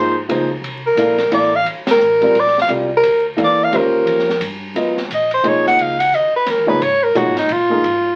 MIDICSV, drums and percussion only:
0, 0, Header, 1, 2, 480
1, 0, Start_track
1, 0, Tempo, 343446
1, 873, Time_signature, 3, 2, 24, 8
1, 11397, End_track
2, 0, Start_track
2, 0, Title_t, "Drums"
2, 411, Note_on_c, 9, 51, 62
2, 551, Note_off_c, 9, 51, 0
2, 895, Note_on_c, 9, 51, 57
2, 1034, Note_off_c, 9, 51, 0
2, 1359, Note_on_c, 9, 44, 52
2, 1359, Note_on_c, 9, 51, 67
2, 1498, Note_off_c, 9, 44, 0
2, 1498, Note_off_c, 9, 51, 0
2, 1652, Note_on_c, 9, 38, 39
2, 1653, Note_on_c, 9, 51, 45
2, 1791, Note_off_c, 9, 38, 0
2, 1793, Note_off_c, 9, 51, 0
2, 1840, Note_on_c, 9, 51, 64
2, 1980, Note_off_c, 9, 51, 0
2, 2323, Note_on_c, 9, 51, 59
2, 2463, Note_off_c, 9, 51, 0
2, 2610, Note_on_c, 9, 38, 86
2, 2612, Note_on_c, 9, 51, 72
2, 2750, Note_off_c, 9, 38, 0
2, 2752, Note_off_c, 9, 51, 0
2, 2798, Note_on_c, 9, 44, 58
2, 2938, Note_off_c, 9, 44, 0
2, 3096, Note_on_c, 9, 51, 46
2, 3236, Note_off_c, 9, 51, 0
2, 3285, Note_on_c, 9, 51, 54
2, 3425, Note_off_c, 9, 51, 0
2, 3447, Note_on_c, 9, 38, 25
2, 3587, Note_off_c, 9, 38, 0
2, 3604, Note_on_c, 9, 38, 48
2, 3743, Note_off_c, 9, 38, 0
2, 3756, Note_on_c, 9, 51, 58
2, 3896, Note_off_c, 9, 51, 0
2, 4241, Note_on_c, 9, 44, 59
2, 4241, Note_on_c, 9, 51, 64
2, 4381, Note_off_c, 9, 44, 0
2, 4381, Note_off_c, 9, 51, 0
2, 4722, Note_on_c, 9, 51, 63
2, 4862, Note_off_c, 9, 51, 0
2, 5208, Note_on_c, 9, 51, 62
2, 5348, Note_off_c, 9, 51, 0
2, 5687, Note_on_c, 9, 51, 60
2, 5826, Note_off_c, 9, 51, 0
2, 5853, Note_on_c, 9, 38, 30
2, 5993, Note_off_c, 9, 38, 0
2, 6001, Note_on_c, 9, 38, 47
2, 6140, Note_off_c, 9, 38, 0
2, 6161, Note_on_c, 9, 44, 59
2, 6161, Note_on_c, 9, 51, 76
2, 6301, Note_off_c, 9, 44, 0
2, 6301, Note_off_c, 9, 51, 0
2, 6651, Note_on_c, 9, 51, 52
2, 6791, Note_off_c, 9, 51, 0
2, 6947, Note_on_c, 9, 38, 43
2, 7087, Note_off_c, 9, 38, 0
2, 7136, Note_on_c, 9, 44, 55
2, 7136, Note_on_c, 9, 51, 57
2, 7276, Note_off_c, 9, 44, 0
2, 7276, Note_off_c, 9, 51, 0
2, 7421, Note_on_c, 9, 51, 41
2, 7560, Note_off_c, 9, 51, 0
2, 7604, Note_on_c, 9, 51, 52
2, 7744, Note_off_c, 9, 51, 0
2, 7914, Note_on_c, 9, 38, 42
2, 8054, Note_off_c, 9, 38, 0
2, 8091, Note_on_c, 9, 51, 50
2, 8230, Note_off_c, 9, 51, 0
2, 8387, Note_on_c, 9, 51, 67
2, 8527, Note_off_c, 9, 51, 0
2, 8563, Note_on_c, 9, 44, 49
2, 8702, Note_off_c, 9, 44, 0
2, 9033, Note_on_c, 9, 38, 39
2, 9035, Note_on_c, 9, 51, 62
2, 9173, Note_off_c, 9, 38, 0
2, 9174, Note_off_c, 9, 51, 0
2, 9335, Note_on_c, 9, 36, 54
2, 9475, Note_off_c, 9, 36, 0
2, 9528, Note_on_c, 9, 51, 60
2, 9667, Note_off_c, 9, 51, 0
2, 9997, Note_on_c, 9, 44, 47
2, 9997, Note_on_c, 9, 51, 58
2, 10137, Note_off_c, 9, 44, 0
2, 10137, Note_off_c, 9, 51, 0
2, 10294, Note_on_c, 9, 38, 49
2, 10296, Note_on_c, 9, 51, 46
2, 10434, Note_off_c, 9, 38, 0
2, 10435, Note_off_c, 9, 51, 0
2, 10466, Note_on_c, 9, 51, 61
2, 10606, Note_off_c, 9, 51, 0
2, 10958, Note_on_c, 9, 51, 52
2, 11098, Note_off_c, 9, 51, 0
2, 11397, End_track
0, 0, End_of_file